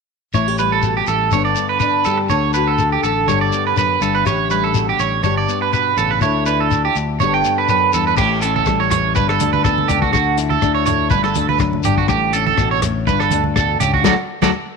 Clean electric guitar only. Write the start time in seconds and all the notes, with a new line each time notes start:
0.34 C#5
0.59 B4
0.72 A4
0.97 G4
1.08 A4
1.33 C#5
1.45 D5
1.69 B4
1.80 B4
2.05 A4
2.18 muted clean electric guitar stroke
2.30 C#5
2.54 B4
2.67 A4
2.92 G4
3.03 A4
3.28 C#5
3.41 D5
3.67 B4
3.78 B4
4.02 A4
4.15 B4
4.27 C#5
4.51 B4
4.64 A4
4.89 G4
5.00 C#5
5.23 C#5
5.37 D5
5.62 B4
5.73 B4
5.98 A4
6.11 B4
6.22 C#5
6.46 B4
6.60 A4
6.85 G4
7.20 C#5
7.34 G5
7.58 B4
7.70 B4
7.94 A4
8.07 B4
8.17 G4
8.42 A4
8.56 A4
8.80 C#5
8.91 C#5
9.16 B4
9.29 A4
9.53 B4
9.64 A4
9.88 G4
10.02 F#4
10.13 F#4
10.50 A4
10.74 C#5
10.86 C#5
11.10 B4
11.24 A4
11.49 B4
11.60 muted clean electric guitar stroke
11.85 G4
11.98 F#4
12.09 G4
12.33 A4
12.46 A4
12.71 C#5
12.82 muted clean electric guitar stroke
13.07 B4
13.20 A4
13.56 A4
13.80 G4
13.94 F#4
14.05 F#4 A4 D5
14.42 F#4 A4 D5